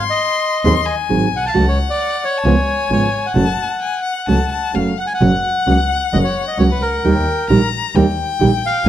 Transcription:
0.00 0.64 C6 medium
0.10 0.95 D#5 medium
0.64 0.84 D#2 medium
0.64 0.73 D#3 medium
0.64 0.73 F#3 medium
0.64 0.74 C4 medium
0.64 0.74 D#4 medium
0.64 0.74 G#4 medium
0.64 0.87 C6 medium
0.86 1.50 G#5 medium
1.09 1.29 G#1 medium
1.09 1.26 D#3 medium
1.09 1.26 F#3 medium
1.09 1.27 C4 medium
1.09 1.27 D#4 medium
1.09 1.27 G#4 medium
1.32 1.54 B1 medium
1.36 1.45 F#5 medium
1.46 1.56 F5 medium
1.46 1.66 A5 medium
1.54 1.74 C#2 medium
1.54 1.63 C#3 medium
1.54 1.63 F#3 medium
1.54 1.64 A3 medium
1.54 1.64 C#4 medium
1.54 1.64 F#4 medium
1.54 2.39 F#5 medium
1.68 1.78 C#5 medium
1.90 2.24 D5 medium
2.25 2.90 C#5 medium
2.38 2.46 A5 medium
2.44 2.63 C#2 medium
2.44 2.54 C#3 medium
2.44 2.54 F3 medium
2.44 2.54 G#3 medium
2.44 2.54 B3 medium
2.44 2.54 F4 medium
2.44 3.35 G#5 medium
2.90 3.09 G#1 soft
2.90 3.07 C#3 medium
2.90 3.07 F3 medium
2.90 3.07 G#3 medium
2.90 3.07 B3 medium
2.90 3.07 F4 medium
2.90 3.26 C#5 medium
3.26 4.72 F#5 medium
3.35 3.55 F#1 medium
3.35 3.44 C#3 medium
3.35 3.45 F#3 medium
3.35 3.45 A3 medium
3.35 3.45 C#4 medium
3.35 3.45 F#4 medium
3.35 3.79 A5 medium
3.82 4.03 G#5 medium
4.04 4.26 F#5 medium
4.27 4.47 C#2 medium
4.27 4.37 C#3 medium
4.27 4.37 F#3 medium
4.27 4.37 A3 medium
4.27 4.37 C#4 medium
4.27 4.37 F#4 medium
4.27 4.50 A5 medium
4.52 4.76 A5 medium
4.73 4.94 F#1 soft
4.73 4.91 C#3 medium
4.73 4.92 F#3 medium
4.73 4.92 A3 medium
4.73 4.92 C#4 medium
4.73 4.92 F#4 medium
4.73 4.99 F5 medium
4.98 5.13 F#5 medium
4.98 5.06 F#5 medium
5.07 5.13 G#5 medium
5.14 6.17 F#5 medium
5.14 5.24 G#5 soft
5.21 5.41 F#1 medium
5.21 5.30 C#3 medium
5.21 5.30 F#3 medium
5.21 5.30 A#3 medium
5.21 5.30 C#4 medium
5.21 5.31 F#4 medium
5.21 7.06 F#5 medium
5.66 5.87 C#2 medium
5.66 5.76 C#3 medium
5.66 5.76 F#3 medium
5.66 5.76 A#3 medium
5.66 5.76 C#4 medium
5.66 5.76 F#4 medium
6.13 6.33 F#1 medium
6.13 6.22 C#3 medium
6.13 6.22 F#3 medium
6.13 6.22 A#3 medium
6.13 6.23 C#4 medium
6.13 6.23 F#4 medium
6.13 6.18 D#5 medium
6.24 6.45 C#5 medium
6.48 6.58 D#5 medium
6.58 6.78 C#2 medium
6.58 6.68 C#3 medium
6.58 6.68 F#3 medium
6.58 6.69 A#3 medium
6.58 6.68 C#4 medium
6.58 6.68 F#4 medium
6.58 6.64 C#5 medium
6.71 6.82 B4 medium
6.81 7.03 C#2 medium
6.81 7.69 A#4 medium
7.03 7.23 D#2 medium
7.03 7.13 D#3 medium
7.03 7.14 G3 medium
7.03 7.14 A#3 medium
7.03 7.14 D#4 medium
7.03 7.14 G4 medium
7.03 7.49 G5 medium
7.49 7.69 A#1 medium
7.49 7.59 D#3 medium
7.49 7.59 G3 medium
7.49 7.59 A#3 medium
7.49 7.59 D#4 medium
7.49 7.59 G4 medium
7.49 7.97 A#5 medium
7.95 8.14 D#2 medium
7.95 8.04 D#3 medium
7.95 8.05 G3 medium
7.95 8.05 A#3 medium
7.95 8.05 D#4 medium
7.95 8.05 G4 medium
7.95 8.88 G5 medium
8.40 8.60 A#1 medium
8.40 8.50 D#3 medium
8.40 8.50 G3 medium
8.40 8.50 A#3 medium
8.40 8.50 D#4 medium
8.40 8.50 G4 medium
8.66 8.89 F5 loud
8.85 8.89 G#1 medium
8.85 8.89 D#3 medium
8.85 8.89 G#3 medium
8.85 8.89 B3 medium

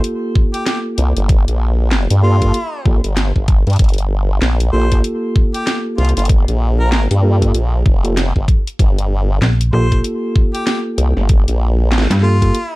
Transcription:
0.00 2.20 A#3 medium
0.00 2.20 F4 medium
0.00 2.20 G4 medium
0.00 2.20 A4 medium
0.00 closed hi-hat medium
0.35 kick loud
0.54 0.62 G4 medium
0.54 closed hi-hat medium
0.66 0.79 G4 medium
0.66 snare loud
0.66 closed hi-hat medium
0.98 1.14 C2 loud
0.98 closed hi-hat medium
1.17 1.45 G1 loud
1.17 closed hi-hat medium
1.29 kick loud
1.29 closed hi-hat medium
1.48 2.08 A#1 loud
1.48 closed hi-hat medium
1.91 snare loud
2.10 2.52 G2 medium
2.10 closed hi-hat medium
2.23 2.36 A#3 medium
2.23 2.36 F4 medium
2.23 2.86 F4 medium
2.23 2.36 G4 medium
2.23 2.36 A4 medium
2.42 2.57 A#3 medium
2.42 2.57 F4 medium
2.42 2.57 G4 medium
2.42 2.57 A4 medium
2.42 kick medium
2.42 closed hi-hat medium
2.54 closed hi-hat medium
2.85 3.01 A#1 medium
2.85 2.99 A#3 medium
2.85 2.99 F4 medium
2.85 2.99 G4 medium
2.85 2.99 A4 medium
2.85 kick loud
3.04 3.33 G1 loud
3.04 closed hi-hat medium
3.17 snare loud
3.17 closed hi-hat medium
3.36 3.64 G1 medium
3.36 kick medium
3.48 kick loud
3.48 closed hi-hat medium
3.67 3.77 G2 medium
3.67 closed hi-hat soft
3.70 closed hi-hat soft
3.73 closed hi-hat soft
3.76 closed hi-hat soft
3.79 4.40 G1 loud
3.79 kick loud
3.79 closed hi-hat medium
3.84 closed hi-hat soft
3.89 closed hi-hat soft
3.94 closed hi-hat soft
3.98 closed hi-hat medium
4.42 4.71 A#1 medium
4.42 snare loud
4.60 closed hi-hat medium
4.72 5.02 A#1 medium
4.72 4.86 A#3 medium
4.72 4.86 F4 medium
4.72 4.86 G4 medium
4.72 4.86 A4 medium
4.72 4.98 C5 medium
4.92 7.20 A#3 medium
4.92 7.20 F4 medium
4.92 7.20 G4 medium
4.92 7.20 A4 medium
4.92 kick medium
4.92 closed hi-hat soft
5.04 closed hi-hat medium
5.36 kick loud
5.54 5.77 G4 medium
5.54 closed hi-hat medium
5.67 snare loud
5.67 closed hi-hat medium
5.98 6.14 C2 loud
5.98 6.10 F4 medium
5.98 closed hi-hat soft
6.05 closed hi-hat soft
6.09 closed hi-hat soft
6.17 6.45 G1 medium
6.17 6.25 F4 medium
6.17 closed hi-hat medium
6.19 closed hi-hat soft
6.25 closed hi-hat medium
6.29 kick loud
6.29 closed hi-hat medium
6.48 6.90 A#1 loud
6.48 closed hi-hat medium
6.80 6.87 A#4 medium
6.90 7.08 A1 loud
6.90 7.04 A#4 medium
6.90 snare loud
7.11 7.52 G2 medium
7.11 closed hi-hat medium
7.23 7.36 A#3 medium
7.23 7.36 F4 medium
7.23 7.36 G4 medium
7.23 7.36 A4 medium
7.42 7.57 A#3 medium
7.42 7.57 F4 medium
7.42 7.57 G4 medium
7.42 7.57 A4 medium
7.42 kick medium
7.42 closed hi-hat soft
7.54 7.84 A#1 medium
7.54 closed hi-hat medium
7.86 8.33 F1 medium
7.86 kick loud
8.04 8.19 A#3 medium
8.04 8.19 F4 medium
8.04 8.19 G4 medium
8.04 8.19 A4 medium
8.04 closed hi-hat medium
8.17 snare loud
8.17 closed hi-hat medium
8.36 8.46 G1 loud
8.36 kick medium
8.48 kick loud
8.48 closed hi-hat medium
8.67 closed hi-hat soft
8.79 9.40 G1 loud
8.79 kick loud
8.79 closed hi-hat medium
8.98 closed hi-hat soft
9.42 9.71 A#1 medium
9.42 snare loud
9.61 closed hi-hat medium
9.73 10.02 A#1 medium
9.73 9.86 A#3 medium
9.73 9.86 F4 medium
9.73 9.86 G4 medium
9.73 9.86 A4 medium
9.73 9.98 C5 medium
9.92 12.20 A#3 medium
9.92 12.20 F4 medium
9.92 12.20 G4 medium
9.92 12.20 A4 medium
9.92 kick medium
9.92 closed hi-hat soft
10.04 closed hi-hat medium
10.36 kick loud
10.54 10.62 G4 medium
10.54 closed hi-hat soft
10.66 10.79 G4 medium
10.66 snare loud
10.66 closed hi-hat medium
10.98 11.14 C2 loud
10.98 closed hi-hat medium
11.17 11.45 G1 loud
11.17 snare soft
11.29 kick loud
11.29 closed hi-hat medium
11.48 11.90 A#1 loud
11.48 closed hi-hat soft
11.90 12.08 A1 loud
11.90 snare loud
11.98 snare medium
12.02 snare medium
12.10 12.52 G2 loud
12.10 snare medium
12.10 closed hi-hat medium
12.13 snare soft
12.19 12.36 A#3 medium
12.19 12.36 F4 medium
12.19 12.76 F4 medium
12.19 12.36 G4 medium
12.19 12.36 A4 medium
12.19 snare soft
12.42 12.57 A#3 medium
12.42 12.57 F4 medium
12.42 12.57 G4 medium
12.42 12.57 A4 loud
12.42 kick medium
12.42 closed hi-hat soft
12.55 closed hi-hat medium

